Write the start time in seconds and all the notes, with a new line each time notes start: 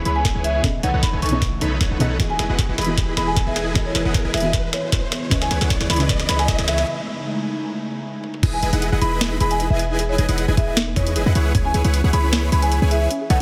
Already playing: C#3 E3 B3 C#4 E4 B4 D#5, riser
0.05 C#2 E4 G#4 B4 C#5 B5, closed hi-hat
0.16 G#5
0.25 kick, snare, closed hi-hat
0.35 C#2 E4 G#4 B4 C#5 G#5
0.44 E5, closed hi-hat
0.55 E5
0.62 B2 C#3 A3 B3 C#4 D#4 G#4 A4 D#5, kick, snare, closed hi-hat
0.83 B1 D#4 A4 B4 C#5 F#5 G#5, closed hi-hat
0.94 B1 D#4 A4 B4 C#5 F#5
1.03 B5, kick, snare, closed hi-hat
1.13 B1 D#4 A4 B4 C#5 G#5
1.22 B1 D#4 A4 B4 C#5 G#5 C#6, closed hi-hat
1.26 closed hi-hat
1.29 B2 B3 C#4 C#6, closed hi-hat
1.33 G#4 A4 D#5
1.42 kick, snare, closed hi-hat
1.61 B1 D#4 A4 B4 C#5 B5, closed hi-hat
1.81 B1 D#4 C#5 G#5, kick, snare, closed hi-hat
1.91 B1 D#4 A4 B4 C#5 F#5
1.99 B1 B2 B3 C#4 D#4 G#4 A4 B4 C#5 D#5 F#5, closed hi-hat
2.18 E1 E3 B3 E4 F#4 G#4 D#5, kick, snare, closed hi-hat
2.30 G#5
2.39 E1 E4 G#4 B4 D#5 G#5, snare, closed hi-hat
2.49 E1 E4 G#4 B4 D#5 F#5
2.59 kick, snare, closed hi-hat
2.69 E1 E4 G#4 B4 D#5 F#5
2.78 E1 E4 G#4 B4 D#5 B5, snare, closed hi-hat
2.81 closed hi-hat
2.85 E3 B3 F#4, closed hi-hat
2.89 G#4 D#5
2.98 kick, snare, closed hi-hat
3.17 E1 E4 G#4 B4 D#5 B5, snare, closed hi-hat
3.27 G#5
3.37 kick, snare, closed hi-hat
3.47 E1 E4 G#4 B4 D#5 E5 G#5
3.56 snare, closed hi-hat
3.74 E3 B3 F#4 G#4 D#5, kick, snare, closed hi-hat
3.86 C#5
3.95 E1 E4 G#4 B4 D#5 G#5, snare, closed hi-hat
4.05 E1 E4 G#4 B4 D#5 F#5
4.14 kick, snare, closed hi-hat
4.25 E1 E4 G#4 B4 D#5 G#5
4.34 E1 E4 G#4 B4 D#5 E5 G#5, snare, closed hi-hat
4.37 closed hi-hat
4.40 E3 B3 F#4 E5, closed hi-hat
4.45 G#4 D#5
4.53 kick, snare, closed hi-hat
4.73 C#5, snare, closed hi-hat
4.92 kick, snare, closed hi-hat
5.12 C#3, snare, closed hi-hat
5.29 C#2 C#3 C#4 E4 G#4 B4 C#5 D#5 G#5, kick, snare, closed hi-hat
5.42 G#5, snare
5.51 C#2 E4 G#4 B4 C#5 G#5, snare, closed hi-hat
5.61 C#2 E4 G#4 B4 C#5 F#5, snare
5.70 kick, snare, closed hi-hat
5.80 C#2 E4 G#4 B4 C#5 F#5, snare
5.90 C#2 E4 G#4 B4 C#5 B5, snare, closed hi-hat
5.93 closed hi-hat
5.96 C#3 C#4 E4, snare, closed hi-hat
6.01 B4 D#5
6.09 kick, snare, closed hi-hat
6.20 snare
6.29 C#2 E4 G#4 B4 C#5 B5, snare, closed hi-hat
6.39 G#5, snare
6.48 kick, snare, closed hi-hat
6.58 C#2 E4 G#4 B4 C#5 G#5, snare
6.68 E5, snare, closed hi-hat
6.78 E5, snare
6.87 G#3 A3 D#4
8.24 high tom
8.34 mid tom
8.43 E1 D#4 E4 G#4 B4 D#5 G#5, kick, closed hi-hat, crash
8.53 B4 G#5
8.63 E1 E4 G#4 B4 D#5 G#5, closed hi-hat
8.73 E1 D#4 E4 G#4 B4 D#5 F#5, closed hi-hat
8.82 G#4, closed hi-hat
8.92 E1 E4 G#4 B4 D#5 F#5
9.01 E1 D#4 E4 G#4 B4 D#5 B5, closed hi-hat
9.12 B4
9.21 D#5, snare, closed hi-hat
9.31 D#4
9.40 E1 E4 G#4 B4 D#5 B5, closed hi-hat
9.51 D#5 G#5, closed hi-hat
9.60 D#4, closed hi-hat
9.70 E1 E4 G#4 B4 D#5 E5 G#5
9.79 D#5, closed hi-hat
9.90 D#4
9.99 G#4, closed hi-hat
10.09 C#5 D#5
10.18 E1 D#4 E4 G#4 B4 D#5 G#5, closed hi-hat
10.29 E1 E4 G#4 B4 D#5 F#5, closed hi-hat
10.38 D#5, closed hi-hat
10.48 E1 D#4 E4 G#4 B4 D#5 G#5
10.57 E1 E4 G#4 B4 D#5 E5 G#5, kick, closed hi-hat
10.68 D#5 E5
10.77 D#4, snare, closed hi-hat
10.87 B4
10.96 E2 E4 G#4 B4 C#5 D#5 C#6, kick, closed hi-hat
11.07 D#4, closed hi-hat
11.16 E1 E4 G#4 B4 D#5 G#5, closed hi-hat
11.26 E2 E4 G#4 B4 D#5 F#5
11.35 C#2 C#4 E4 G#4 B4 C#5 F#5, closed hi-hat
11.46 B4
11.55 C#2 E4 G#4 B4 C#5 G#5, kick, closed hi-hat
11.65 C#4 G#5
11.74 C#2 E4 G#4 B4 C#5 G#5, closed hi-hat
11.84 C#2 E4 G#4 B4 C#5 F#5, closed hi-hat
11.94 C#4, closed hi-hat
12.04 C#2 E4 G#4 B4 C#5 F#5
12.13 C#2 E4 G#4 B4 C#5 B5, closed hi-hat
12.23 C#4
12.33 G#4, snare, closed hi-hat
12.43 C#5
12.52 C#2 C#4 E4 G#4 B4 C#5 B5, closed hi-hat
12.62 B4 G#5, closed hi-hat
12.72 C#5, closed hi-hat
12.82 C#2 C#4 E4 G#4 B4 C#5 G#5
12.91 G#4 E5, closed hi-hat
13.01 C#5 E5
13.11 C#4, closed hi-hat
13.21 G#4
13.30 B1 D#4 A4 B4 C#5 F#5 G#5, closed hi-hat